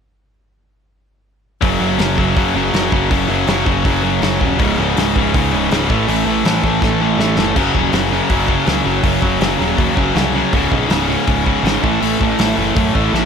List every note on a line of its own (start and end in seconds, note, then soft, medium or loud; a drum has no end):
1.61 1.79 F#1 medium
1.61 1.79 F#2 loud
1.61 1.80 C#3 medium
1.61 1.81 F#3 loud
1.61 kick loud
1.61 open hi-hat medium
1.80 1.98 F#1 medium
1.80 1.98 F#2 medium
1.80 1.97 C#3 medium
1.80 1.99 F#3 medium
1.98 2.17 F#1 medium
1.98 2.17 F#2 medium
1.98 2.17 C#3 medium
1.98 2.18 F#3 medium
1.98 snare loud
1.98 open hi-hat medium
2.17 2.36 F#1 medium
2.17 2.35 F#2 medium
2.17 2.36 C#3 medium
2.17 2.36 F#3 medium
2.17 kick medium
2.36 2.53 F#2 medium
2.36 2.54 C#3 medium
2.36 2.55 F#3 loud
2.36 kick loud
2.36 open hi-hat soft
2.54 2.72 F#1 medium
2.54 2.72 F#2 medium
2.54 2.72 C#3 medium
2.54 2.73 F#3 medium
2.72 2.91 F#1 medium
2.72 2.92 F#2 medium
2.72 2.92 C#3 loud
2.72 2.93 F#3 medium
2.72 snare medium
2.72 open hi-hat soft
2.92 3.10 F#1 medium
2.92 3.09 F#2 medium
2.92 3.11 C#3 medium
2.92 3.11 F#3 medium
2.92 kick medium
3.11 3.27 F#1 medium
3.11 3.28 F#2 medium
3.11 3.29 C#3 medium
3.11 3.30 F#3 medium
3.11 kick medium
3.11 open hi-hat medium
3.28 3.46 F#1 medium
3.28 3.46 F#2 medium
3.28 3.47 C#3 medium
3.28 3.47 F#3 medium
3.47 3.65 F#1 medium
3.47 3.65 F#2 medium
3.47 3.64 C#3 medium
3.47 3.65 F#3 medium
3.47 snare loud
3.47 open hi-hat soft
3.66 3.84 F#1 medium
3.66 3.84 F#2 medium
3.66 3.84 C#3 medium
3.66 3.85 F#3 medium
3.66 kick medium
3.85 4.20 F#1 medium
3.85 4.01 F#2 medium
3.85 4.02 C#3 medium
3.85 4.02 F#3 medium
3.85 kick loud
3.85 open hi-hat soft
4.02 4.20 F#2 medium
4.02 4.20 C#3 medium
4.02 4.21 F#3 medium
4.21 4.40 F#1 medium
4.21 4.39 F#2 medium
4.21 4.40 C#3 medium
4.21 4.40 F#3 loud
4.21 snare medium
4.21 open hi-hat soft
4.40 4.60 D#1 medium
4.40 4.58 F#2 medium
4.40 4.58 C#3 medium
4.40 4.58 F#3 medium
4.40 kick medium
4.58 4.77 C#1 medium
4.58 4.77 C#2 loud
4.58 4.78 G#2 loud
4.58 4.78 C#3 medium
4.58 kick loud
4.58 open hi-hat soft
4.78 4.96 C#1 medium
4.78 4.95 C#2 medium
4.78 4.96 G#2 medium
4.78 4.97 C#3 medium
4.96 5.14 C#1 medium
4.96 5.14 C#2 medium
4.96 5.15 G#2 medium
4.96 5.15 C#3 medium
4.96 snare loud
4.96 open hi-hat medium
5.15 5.33 C#1 medium
5.15 5.33 C#2 medium
5.15 5.34 G#2 medium
5.15 5.34 C#3 medium
5.15 kick medium
5.34 5.52 C#2 medium
5.34 5.51 C#2 medium
5.34 5.51 G#2 loud
5.34 5.52 C#3 loud
5.34 kick loud
5.34 open hi-hat medium
5.52 5.70 C#1 medium
5.52 5.69 C#2 medium
5.52 5.69 G#2 medium
5.52 5.70 C#3 medium
5.70 5.88 C#1 medium
5.70 5.88 C#2 medium
5.70 5.88 G#2 medium
5.70 5.88 C#3 loud
5.70 snare medium
5.70 open hi-hat soft
5.89 6.07 A1 medium
5.89 6.06 A2 medium
5.89 6.07 E3 medium
5.89 6.07 A3 medium
5.89 kick loud
6.07 6.25 A1 medium
6.07 6.25 A2 loud
6.07 6.26 E3 medium
6.07 6.27 A3 loud
6.07 open hi-hat medium
6.25 6.43 A1 medium
6.25 6.44 A2 medium
6.25 6.45 E3 medium
6.25 6.45 A3 medium
6.44 6.62 A1 medium
6.44 6.62 A2 medium
6.44 6.63 E3 medium
6.44 6.63 A3 medium
6.44 snare loud
6.44 open hi-hat medium
6.63 6.81 A1 medium
6.63 6.80 A2 medium
6.63 6.81 E3 medium
6.63 6.81 A3 medium
6.63 kick medium
6.81 7.17 A1 medium
6.81 7.00 A2 medium
6.81 7.00 E3 loud
6.81 7.00 A3 loud
6.81 kick loud
6.81 snare medium
7.01 7.17 A2 medium
7.01 7.18 E3 medium
7.01 7.18 A3 medium
7.17 7.36 A1 medium
7.17 7.36 A2 medium
7.17 7.36 E3 medium
7.17 7.37 A3 loud
7.17 snare medium
7.36 7.55 F#1 medium
7.36 7.55 A2 medium
7.36 7.55 E3 medium
7.36 7.55 A3 medium
7.36 snare medium
7.55 7.69 F#1 medium
7.55 7.73 F#2 medium
7.55 7.73 C#3 medium
7.55 7.74 F#3 loud
7.55 kick loud
7.55 crash loud
7.73 7.88 D#1 medium
7.73 7.92 F#2 medium
7.73 7.91 C#3 medium
7.73 7.93 F#3 medium
7.73 kick medium
7.93 8.19 F#1 medium
7.93 8.10 F#2 medium
7.93 8.09 C#3 medium
7.93 8.10 F#3 medium
7.93 snare loud
7.93 open hi-hat medium
8.10 8.28 F#2 medium
8.10 8.28 C#3 medium
8.10 8.29 F#3 loud
8.29 8.56 F#1 medium
8.29 8.45 F#2 medium
8.29 8.46 C#3 medium
8.29 8.46 F#3 medium
8.29 kick loud
8.29 open hi-hat medium
8.46 8.63 F#2 medium
8.46 8.64 C#3 medium
8.46 8.65 F#3 medium
8.46 kick medium
8.65 8.81 C#2 medium
8.65 8.83 F#2 loud
8.65 8.83 C#3 loud
8.65 8.84 F#3 medium
8.65 snare medium
8.65 open hi-hat medium
8.85 8.99 F#1 medium
8.85 9.02 F#2 medium
8.85 9.02 C#3 medium
8.85 9.03 F#3 medium
9.03 9.17 F#1 medium
9.03 9.19 F#2 loud
9.03 9.20 C#3 loud
9.03 9.21 F#3 loud
9.03 kick loud
9.03 open hi-hat medium
9.21 9.35 F#1 medium
9.21 9.38 F#2 medium
9.21 9.39 C#3 medium
9.21 9.39 F#3 medium
9.21 kick medium
9.39 9.54 F#1 medium
9.39 9.56 F#2 medium
9.39 9.57 C#3 medium
9.39 9.57 F#3 medium
9.39 snare loud
9.39 open hi-hat medium
9.58 9.73 D#1 medium
9.58 9.76 F#2 medium
9.58 9.76 C#3 loud
9.58 9.77 F#3 loud
9.77 9.91 D#2 medium
9.77 9.94 F#2 medium
9.77 9.94 C#3 medium
9.77 9.94 F#3 medium
9.77 kick loud
9.77 open hi-hat soft
9.95 10.10 F#1 medium
9.95 10.13 F#2 medium
9.95 10.12 C#3 medium
9.95 10.14 F#3 medium
9.95 kick medium
10.14 10.42 C2 medium
10.14 10.33 F#2 medium
10.14 10.34 C#3 loud
10.14 10.34 F#3 loud
10.14 snare loud
10.14 open hi-hat soft
10.34 10.52 F#2 medium
10.34 10.52 C#3 medium
10.34 10.52 F#3 medium
10.53 10.66 C#1 medium
10.53 10.72 C#2 loud
10.53 10.72 G#2 loud
10.53 10.73 C#3 loud
10.53 kick loud
10.53 open hi-hat medium
10.72 10.85 A#1 medium
10.72 10.88 C#2 medium
10.72 10.89 G#2 medium
10.72 10.89 C#3 medium
10.72 kick medium
10.88 11.15 C#1 medium
10.88 11.06 C#2 medium
10.88 11.07 G#2 medium
10.88 11.07 C#3 medium
10.88 snare loud
10.88 open hi-hat medium
11.07 11.25 C#2 medium
11.07 11.25 G#2 loud
11.07 11.26 C#3 loud
11.26 11.54 C#1 medium
11.26 11.44 C#2 medium
11.26 11.44 G#2 medium
11.26 11.44 C#3 medium
11.26 kick loud
11.26 open hi-hat soft
11.45 11.63 C#2 medium
11.45 11.63 G#2 medium
11.45 11.64 C#3 medium
11.45 kick medium
11.63 11.77 G#1 medium
11.63 11.82 C#2 loud
11.63 11.82 G#2 loud
11.63 11.82 C#3 loud
11.63 snare loud
11.63 open hi-hat medium
11.82 11.96 A1 medium
11.82 11.99 A2 medium
11.82 12.00 E3 medium
11.82 12.00 A3 medium
11.82 kick medium
12.00 12.15 A1 medium
12.00 12.19 A2 loud
12.00 12.20 E3 loud
12.00 12.20 A3 loud
12.00 open hi-hat medium
12.20 12.34 A1 medium
12.20 12.38 A2 medium
12.20 12.38 E3 medium
12.20 12.40 A3 medium
12.20 kick medium
12.39 12.52 A1 medium
12.39 12.55 A2 medium
12.39 12.56 E3 medium
12.39 12.57 A3 medium
12.39 snare loud
12.39 open hi-hat medium
12.57 12.70 F#1 medium
12.57 12.75 A2 medium
12.57 12.76 E3 medium
12.57 12.77 A3 medium
12.76 12.89 F#2 medium
12.76 12.93 A2 medium
12.76 12.94 E3 medium
12.76 12.94 A3 medium
12.76 kick loud
12.76 open hi-hat soft
12.94 13.08 A1 medium
12.94 13.11 A2 medium
12.94 13.12 E3 medium
12.94 13.12 A3 medium
12.94 kick medium
13.12 13.25 A1 medium
13.12 13.25 A2 loud
13.12 13.25 E3 loud
13.12 13.25 A3 loud
13.12 snare soft